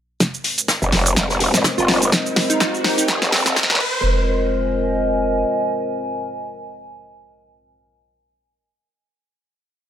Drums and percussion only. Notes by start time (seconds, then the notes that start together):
0.20 kick, snare, closed hi-hat, shaker
0.34 shaker
0.44 closed hi-hat, open hi-hat
0.58 closed hi-hat, shaker
0.68 kick, snare, closed hi-hat, shaker
0.82 shaker
0.92 snare, closed hi-hat, open hi-hat
1.06 closed hi-hat, shaker
1.16 kick, snare, closed hi-hat, shaker
1.30 snare, shaker
1.40 closed hi-hat, open hi-hat
1.54 snare, closed hi-hat, shaker
1.64 kick, snare, closed hi-hat, shaker
1.78 shaker
1.88 snare, closed hi-hat, open hi-hat
2.02 closed hi-hat, shaker
2.12 kick, snare, closed hi-hat, shaker
2.26 shaker
2.36 snare, closed hi-hat, open hi-hat
2.50 closed hi-hat, shaker
2.60 kick, snare, closed hi-hat, shaker
2.74 shaker
2.84 snare, open hi-hat
2.98 closed hi-hat, shaker
3.08 kick, snare, closed hi-hat, shaker
3.22 snare, closed hi-hat, shaker
3.32 snare, closed hi-hat, open hi-hat
3.46 snare, closed hi-hat, shaker
3.56 kick, snare, closed hi-hat, shaker
3.63 snare
3.70 snare, shaker
3.75 snare
3.80 kick, crash